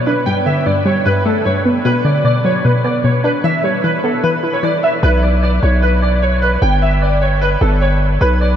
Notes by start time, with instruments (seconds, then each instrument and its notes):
Already playing: synth pluck B2 F#3 B3
0.06 synth pluck D4, grand piano B4
0.26 synth pluck G2, grand piano G5
0.46 synth pluck D3, grand piano E5
0.66 synth pluck G2, grand piano D5
0.85 synth pluck G3, grand piano C#5
1.05 synth pluck G2, grand piano B4
1.25 synth pluck A3, grand piano A4
1.45 synth pluck G2, grand piano C#5
1.65 synth pluck B3
1.85 synth pluck B2, grand piano B4
2.05 synth pluck D3, grand piano D5
2.24 synth pluck B2, grand piano D5
2.45 synth pluck F#3, grand piano C#5
2.65 synth pluck B2, grand piano B4
2.84 synth pluck B3, grand piano D5
3.04 synth pluck B2, grand piano C#5
3.24 synth pluck D4, grand piano B4
3.44 synth pluck E3, grand piano E5
3.64 synth pluck G3, grand piano C#5
3.84 synth pluck E3, grand piano B4
4.04 synth pluck B3, grand piano A4
4.23 synth pluck E3, grand piano B4
4.43 synth pluck E4
4.53 grand piano C#5
4.63 synth pluck E3, grand piano D5
4.83 grand piano E5, synth pluck E5
5.03 808-style bass B1, grand piano B4
5.23 grand piano D5
5.43 grand piano D5
5.63 808-style bass B1, grand piano C#5
5.82 grand piano B4
6.02 grand piano D5
6.22 grand piano C#5
6.42 grand piano B4
6.62 808-style bass G1, grand piano G5
6.82 grand piano E5
7.02 grand piano D5
7.21 grand piano C#5
7.41 grand piano B4
7.61 808-style bass G1, grand piano A4
7.81 grand piano C#5
8.21 808-style bass B1, grand piano B4
8.41 grand piano D5